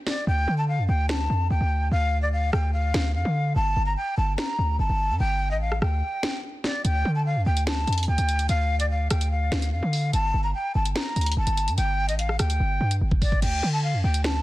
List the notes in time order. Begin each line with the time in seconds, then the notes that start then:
0.07 D5, snare, open hi-hat
0.27 D2 G5
0.48 D3
0.58 A5
0.68 F5
0.78 F2
0.88 D2 G5
1.09 A5, snare
1.30 F2
1.50 D2 G5
1.61 D2
1.91 D2 F5
2.22 D5
2.33 F5
2.53 D2 G5, cross-stick
2.73 F5
2.94 D2, snare
3.15 F2 F5
3.25 D3
3.56 G1 A5
3.76 G1
3.86 A#5
3.97 G5
4.17 G1 A5
4.38 A#5, snare
4.59 D2
4.79 G1 A5
4.89 G1
5.10 G2
5.20 G1 G5
5.51 A1 D#5
5.61 F5
5.72 cross-stick
5.82 D2 G5, cross-stick
6.23 snare
6.64 D5, snare
6.85 D2 G5, closed hi-hat
7.05 D3
7.15 A5
7.26 F5
7.36 F2
7.46 D2 G5
7.57 closed hi-hat
7.67 A5, snare
7.87 F2, closed hi-hat
7.93 closed hi-hat
7.98 closed hi-hat
8.03 closed hi-hat
8.08 D2 G5
8.18 D2, closed hi-hat
8.29 closed hi-hat
8.39 closed hi-hat
8.49 D2 F5, closed hi-hat
8.80 D5, closed hi-hat
8.90 F5
9.10 D2 G5, cross-stick, closed hi-hat
9.21 closed hi-hat
9.31 F5
9.52 D2, snare
9.62 closed hi-hat
9.72 F2 F5
9.83 D3
9.93 open hi-hat
10.13 G1 A5, closed hi-hat
10.34 G1
10.44 A#5
10.54 G5
10.75 G1 A5
10.85 closed hi-hat
10.95 A#5, snare
11.16 D2, closed hi-hat
11.21 closed hi-hat
11.26 closed hi-hat
11.32 closed hi-hat
11.37 G1 A5
11.47 G1, closed hi-hat
11.57 closed hi-hat
11.68 G2, closed hi-hat
11.77 G1 G5, closed hi-hat
12.09 A1 D#5, closed hi-hat
12.19 F5, closed hi-hat
12.29 cross-stick
12.39 D2 G5, cross-stick, closed hi-hat
12.50 closed hi-hat
12.60 G1
12.81 G2
12.91 closed hi-hat
13.01 G1
13.11 kick
13.22 D5, kick, open hi-hat
13.32 kick
13.42 D2 G5, closed hi-hat, crash
13.63 D3
13.73 A5
13.84 F5
13.94 F2
14.03 D2 G5
14.14 closed hi-hat
14.24 A5, snare